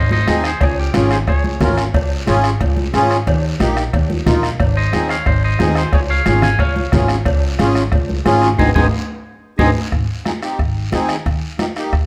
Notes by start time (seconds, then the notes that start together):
Already playing: G#1 C5 D#5
0.11 C5 D#5, high conga
0.27 D#2 C4 D#4 G#4, bombo rim, cowbell, high conga, short guiro
0.44 G#4 C5, bombo rim, short guiro
0.61 C#2 G#4 C#5, bombo low, bombo rim, cowbell, long guiro
0.79 G4 A#4
0.93 G#1 C#4 F4 G#4, bombo rim, cowbell, high conga, short guiro
1.11 G#4 C5, bombo rim, short guiro
1.27 C#2 G#4 C#5, bombo low, bombo rim, cowbell, long guiro
1.44 high conga
1.60 G#1 C#4 F4 A#4, bombo low, bombo rim, cowbell, high conga, low conga, low timbale, short guiro
1.78 bombo rim, short guiro
1.94 C#2, bombo low, bombo rim, cowbell, long guiro
2.27 G#1 C#4 F4 G#4, bombo rim, cowbell, high conga, short guiro
2.44 bombo rim, short guiro
2.60 C#2, bombo low, bombo rim, cowbell, long guiro
2.77 high conga
2.94 G#1 C#4 F4 G#4, bombo rim, cowbell, high conga, low timbale, short guiro
3.11 bombo rim, short guiro
3.27 D#2, bombo low, bombo rim, cowbell, long guiro
3.59 A#1 A#3 D#4 G4, bombo rim, cowbell, high conga, short guiro
3.77 bombo rim, short guiro
3.93 D#2, bombo low, bombo rim, cowbell, long guiro
4.10 high conga
4.26 A#1 A#3 D#4 F4, bombo low, bombo rim, cowbell, high conga, low conga, short guiro
4.43 bombo rim, short guiro
4.60 G#1, bombo low, bombo rim, cowbell, long guiro
4.77 C5 D#5
4.92 D#2 C4 D#4 G#4, bombo rim, cowbell, high conga, short guiro
5.09 C#5 F5, bombo rim, short guiro
5.26 G#1 C5 D#5, bombo low, bombo rim, cowbell, long guiro
5.44 C5 D#5
5.59 D#2 C4 D#4 G#4, bombo rim, cowbell, high conga, low timbale, short guiro
5.75 G#4 C5, bombo rim, short guiro
5.93 C#2 G#4 C#5, bombo low, bombo rim, cowbell, long guiro
6.10 C#5 F5
6.26 G#1 C#4 F4 G#4, bombo rim, cowbell, high conga, short guiro
6.42 F5 G#5, bombo rim, low conga, short guiro
6.59 C#2 C#5 F5, bombo low, bombo rim, cowbell, long guiro
6.76 high conga
6.92 G#1 C#4 F4 G#4, bombo low, bombo rim, cowbell, high conga, low conga, low timbale, short guiro
7.08 bombo rim, short guiro
7.25 C#2, bombo low, bombo rim, cowbell, long guiro
7.59 G#1 C#4 F4 G#4, bombo rim, cowbell, high conga, short guiro
7.75 bombo rim, short guiro
7.92 C#2, bombo low, bombo rim, cowbell, long guiro
8.09 high conga
8.25 G#1 C#4 F4 G#4, bombo rim, cowbell, high conga, low timbale, short guiro
8.42 bombo rim, short guiro
8.59 G#1 C4 D#4 G#4 C5 D#5 G#5, bombo low, high conga, high timbale, long guiro
8.75 G#1 C4 D#4 G#4 C5 D#5 G#5, bombo low, high conga, high timbale, long guiro
9.59 G#1 C4 D#4 G#4 C5 D#5 G#5, bombo low, high conga, high timbale, long guiro
9.92 G#1, bombo low, bombo rim, long guiro
10.25 C4 D#4 G#4, bombo rim, high conga, short guiro
10.42 C4 D#4 G4, bombo rim, short guiro
10.59 G#1, bombo low, bombo rim, long guiro
10.92 D#2 C4 D#4 G#4, bombo rim, high conga, short guiro
11.09 bombo rim, short guiro
11.26 D#2, bombo low, bombo rim, long guiro
11.59 A#3 D#4 G4, bombo rim, high conga, short guiro
11.76 A#3 D#4 G4, bombo rim, short guiro
11.93 D#2, bombo low, bombo rim, long guiro